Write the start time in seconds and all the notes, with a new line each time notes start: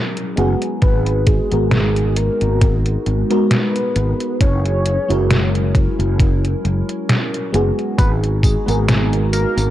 Already playing: F#3 G#3 C#4 E4 F#4 G#4 A#4 A#5
0.17 closed hi-hat
0.36 F#1 G#3 B3 F#4 G#4, closed hi-hat
0.62 closed hi-hat
0.82 G#1 G#3 B3 D#4 F#4 B4, kick, closed hi-hat
1.07 closed hi-hat
1.27 G#4, kick, closed hi-hat
1.51 G#1 G#3 B3 F#4 A#4, closed hi-hat
1.72 snare, closed hi-hat
1.96 closed hi-hat
2.17 A#4, closed hi-hat
2.41 G#1, closed hi-hat
2.61 G#4, kick, closed hi-hat
2.86 closed hi-hat
3.06 G#1, closed hi-hat
3.30 G#3 B3 F#4 A#4, closed hi-hat
3.51 B4, snare, closed hi-hat
3.76 closed hi-hat
3.96 G#1, closed hi-hat
4.20 closed hi-hat
4.40 F#1 F#3 C#4 E4 A#4 C#5, kick, closed hi-hat
4.65 closed hi-hat
4.86 closed hi-hat
5.08 F#1 G#3 E4 F#4 A#4, closed hi-hat
5.31 snare, closed hi-hat
5.55 closed hi-hat
5.75 kick, closed hi-hat
5.99 F#1, closed hi-hat
6.20 F#4, kick, closed hi-hat
6.45 closed hi-hat
6.64 F#1, closed hi-hat
6.89 closed hi-hat
7.09 snare, closed hi-hat
7.34 closed hi-hat
7.52 F#1 G#3 B3 F#4 G#4, closed hi-hat
7.79 closed hi-hat
7.98 G#1 G#3 B3 D#4 B4 A#5, kick, closed hi-hat, tambourine
8.24 closed hi-hat
8.43 G#4, kick, closed hi-hat, tambourine
8.66 G#1 G#3 B3 F#4 A#4, closed hi-hat, tambourine
8.88 snare, closed hi-hat, tambourine
9.13 closed hi-hat
9.33 A#4, closed hi-hat, tambourine
9.57 G#1, closed hi-hat, tambourine